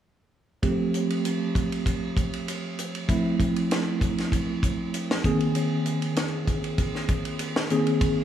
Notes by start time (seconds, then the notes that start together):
0.62 F3 A3 C4 G4, kick, hi-hat pedal, ride
0.94 hi-hat pedal, ride
1.10 ride
1.25 hi-hat pedal, ride
1.55 kick, hi-hat pedal, ride
1.72 ride
1.86 kick, hi-hat pedal, ride
2.17 kick, hi-hat pedal, ride
2.33 ride
2.48 hi-hat pedal, ride
2.79 hi-hat pedal, ride
2.95 ride
3.08 F3 A3 C4 E4, kick, hi-hat pedal, ride
3.40 kick, hi-hat pedal, ride
3.56 ride
3.71 snare, hi-hat pedal, ride
4.01 kick, hi-hat pedal, ride
4.18 snare, ride
4.32 kick, hi-hat pedal, ride
4.63 kick, hi-hat pedal, ride
4.94 hi-hat pedal, ride
5.11 snare
5.24 D#3 A#3 C4 G#4, kick, hi-hat pedal, ride
5.40 ride
5.55 hi-hat pedal, ride
5.86 hi-hat pedal, ride
6.02 ride
6.16 snare, hi-hat pedal, ride
6.47 kick, hi-hat pedal, ride
6.64 ride
6.78 kick, hi-hat pedal, ride
6.95 snare
7.08 kick, hi-hat pedal, ride
7.25 ride
7.39 hi-hat pedal, ride
7.56 snare
7.70 D#3 A#3 C4 G#4, hi-hat pedal, ride
7.87 ride
8.01 kick, hi-hat pedal, ride